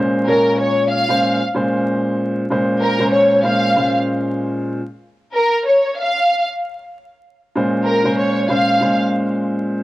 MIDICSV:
0, 0, Header, 1, 3, 480
1, 0, Start_track
1, 0, Key_signature, -5, "minor"
1, 0, Tempo, 631579
1, 1898, Time_signature, 4, 2, 24, 8
1, 7472, End_track
2, 0, Start_track
2, 0, Title_t, "Violin section"
2, 0, Program_c, 0, 48
2, 211, Note_on_c, 0, 70, 81
2, 430, Note_off_c, 0, 70, 0
2, 456, Note_on_c, 0, 73, 84
2, 673, Note_off_c, 0, 73, 0
2, 691, Note_on_c, 0, 77, 96
2, 1046, Note_off_c, 0, 77, 0
2, 2136, Note_on_c, 0, 70, 91
2, 2353, Note_off_c, 0, 70, 0
2, 2372, Note_on_c, 0, 73, 83
2, 2590, Note_off_c, 0, 73, 0
2, 2624, Note_on_c, 0, 77, 86
2, 2972, Note_off_c, 0, 77, 0
2, 4054, Note_on_c, 0, 70, 89
2, 4272, Note_off_c, 0, 70, 0
2, 4305, Note_on_c, 0, 73, 80
2, 4518, Note_off_c, 0, 73, 0
2, 4547, Note_on_c, 0, 77, 85
2, 4894, Note_off_c, 0, 77, 0
2, 5964, Note_on_c, 0, 70, 80
2, 6186, Note_off_c, 0, 70, 0
2, 6215, Note_on_c, 0, 73, 77
2, 6432, Note_off_c, 0, 73, 0
2, 6465, Note_on_c, 0, 77, 79
2, 6813, Note_off_c, 0, 77, 0
2, 7472, End_track
3, 0, Start_track
3, 0, Title_t, "Grand piano"
3, 0, Program_c, 1, 0
3, 0, Note_on_c, 1, 46, 89
3, 0, Note_on_c, 1, 56, 87
3, 0, Note_on_c, 1, 61, 86
3, 0, Note_on_c, 1, 72, 102
3, 195, Note_off_c, 1, 46, 0
3, 197, Note_off_c, 1, 56, 0
3, 199, Note_off_c, 1, 61, 0
3, 200, Note_off_c, 1, 72, 0
3, 207, Note_on_c, 1, 46, 93
3, 211, Note_on_c, 1, 56, 90
3, 215, Note_on_c, 1, 61, 90
3, 218, Note_on_c, 1, 73, 111
3, 773, Note_off_c, 1, 46, 0
3, 775, Note_off_c, 1, 56, 0
3, 777, Note_off_c, 1, 61, 0
3, 778, Note_off_c, 1, 73, 0
3, 826, Note_on_c, 1, 46, 94
3, 828, Note_on_c, 1, 56, 84
3, 832, Note_on_c, 1, 61, 88
3, 836, Note_on_c, 1, 72, 100
3, 1047, Note_off_c, 1, 46, 0
3, 1048, Note_off_c, 1, 56, 0
3, 1050, Note_off_c, 1, 61, 0
3, 1052, Note_off_c, 1, 72, 0
3, 1173, Note_on_c, 1, 46, 100
3, 1177, Note_on_c, 1, 56, 82
3, 1180, Note_on_c, 1, 61, 84
3, 1183, Note_on_c, 1, 72, 111
3, 1845, Note_off_c, 1, 46, 0
3, 1846, Note_off_c, 1, 56, 0
3, 1848, Note_off_c, 1, 61, 0
3, 1850, Note_off_c, 1, 72, 0
3, 1901, Note_on_c, 1, 46, 101
3, 1904, Note_on_c, 1, 56, 87
3, 1908, Note_on_c, 1, 61, 75
3, 1911, Note_on_c, 1, 72, 104
3, 2241, Note_off_c, 1, 46, 0
3, 2243, Note_off_c, 1, 56, 0
3, 2245, Note_off_c, 1, 61, 0
3, 2246, Note_off_c, 1, 72, 0
3, 2272, Note_on_c, 1, 46, 93
3, 2275, Note_on_c, 1, 56, 91
3, 2278, Note_on_c, 1, 61, 92
3, 2281, Note_on_c, 1, 72, 104
3, 2592, Note_off_c, 1, 46, 0
3, 2594, Note_off_c, 1, 56, 0
3, 2595, Note_off_c, 1, 61, 0
3, 2597, Note_off_c, 1, 72, 0
3, 2611, Note_on_c, 1, 46, 93
3, 2614, Note_on_c, 1, 56, 88
3, 2617, Note_on_c, 1, 61, 90
3, 2621, Note_on_c, 1, 72, 101
3, 2837, Note_off_c, 1, 46, 0
3, 2839, Note_off_c, 1, 56, 0
3, 2840, Note_off_c, 1, 61, 0
3, 2842, Note_off_c, 1, 72, 0
3, 2854, Note_on_c, 1, 46, 91
3, 2857, Note_on_c, 1, 56, 85
3, 2860, Note_on_c, 1, 61, 89
3, 2863, Note_on_c, 1, 72, 99
3, 3635, Note_off_c, 1, 46, 0
3, 3636, Note_off_c, 1, 56, 0
3, 3638, Note_off_c, 1, 61, 0
3, 3639, Note_off_c, 1, 72, 0
3, 5742, Note_on_c, 1, 46, 99
3, 5745, Note_on_c, 1, 56, 87
3, 5748, Note_on_c, 1, 61, 77
3, 5751, Note_on_c, 1, 72, 100
3, 6081, Note_off_c, 1, 46, 0
3, 6083, Note_off_c, 1, 56, 0
3, 6085, Note_off_c, 1, 61, 0
3, 6086, Note_off_c, 1, 72, 0
3, 6110, Note_on_c, 1, 46, 91
3, 6114, Note_on_c, 1, 56, 87
3, 6117, Note_on_c, 1, 61, 93
3, 6120, Note_on_c, 1, 72, 102
3, 6431, Note_off_c, 1, 46, 0
3, 6433, Note_off_c, 1, 56, 0
3, 6435, Note_off_c, 1, 61, 0
3, 6437, Note_off_c, 1, 72, 0
3, 6450, Note_on_c, 1, 46, 89
3, 6453, Note_on_c, 1, 56, 84
3, 6457, Note_on_c, 1, 61, 89
3, 6460, Note_on_c, 1, 72, 101
3, 6677, Note_off_c, 1, 46, 0
3, 6678, Note_off_c, 1, 56, 0
3, 6680, Note_off_c, 1, 61, 0
3, 6682, Note_off_c, 1, 72, 0
3, 6695, Note_on_c, 1, 46, 89
3, 6698, Note_on_c, 1, 56, 86
3, 6701, Note_on_c, 1, 61, 86
3, 6705, Note_on_c, 1, 72, 97
3, 7472, Note_off_c, 1, 46, 0
3, 7472, Note_off_c, 1, 56, 0
3, 7472, Note_off_c, 1, 61, 0
3, 7472, Note_off_c, 1, 72, 0
3, 7472, End_track
0, 0, End_of_file